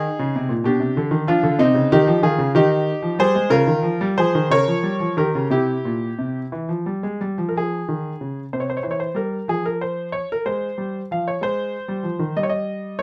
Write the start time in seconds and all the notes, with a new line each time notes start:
Already playing: D#4 G#4
0.19 C#3
0.36 C3
0.49 A#2
0.64 B2 D4 G4
0.80 C3
0.97 D3
1.11 D#3
1.27 F3 D4 F4
1.43 D3
1.59 C3 C4 D#4
1.74 C#3
1.92 D#3 D#4 G4
2.07 F3
2.23 D#3 F4 G#4
2.38 C#3
2.55 D#3 D#4 G4
3.02 F3
3.19 G3 G#4 C5
3.35 G#3
3.50 C#3 F4 A#4
3.67 D#3
3.83 F3
4.01 G3
4.18 F3 G#4 C5
4.35 D#3
4.50 C#3 A#4 C#5
4.67 F3
4.83 G3
5.00 F3
5.17 D#3 G4 A#4
5.35 C#3
5.50 C3 E4 G4
5.85 A#2
6.19 C3
6.52 E3
6.69 F3
6.86 G3
7.03 G#3
7.21 G3
7.38 F3
7.49 A#4
7.56 F3 G#4
7.88 D#3
8.21 C#3
8.53 C3 C5
8.60 C#5
8.70 C5
8.77 C#5
8.83 E3 C5
8.91 C#5
9.00 C5
9.15 G3 A#4
9.48 F3 G#4
9.66 A#4
9.81 C5
10.12 C#5
10.32 A#4
10.46 G#3 C5
10.78 G3
11.11 F3 F5
11.28 C#5
11.41 G#3 C5
11.88 G3
12.03 F3
12.19 D#3
12.36 G3 D#5
12.43 C#5
12.49 D#5
12.99 C#5